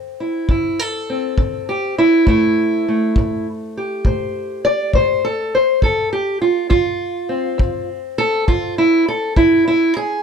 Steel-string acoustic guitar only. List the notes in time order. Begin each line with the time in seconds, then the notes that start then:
Already playing: D3 C4
0.20 E4
0.49 D3 E4
0.79 A4
1.10 C4
1.38 D3
1.69 G4
1.98 E4
2.26 A2 A3 E4
2.88 A3
3.18 A2
3.77 G4
4.06 A2 C5
4.65 D5
4.95 A2 C5
5.25 A4
5.55 C5
5.82 F2 A4
6.13 G4
6.42 F4
6.69 F2 F4
7.29 C4
7.58 F2
8.18 A4
8.48 F2 F4
8.78 E4
9.08 A4
9.37 E2 E4
9.68 E4
9.97 G#4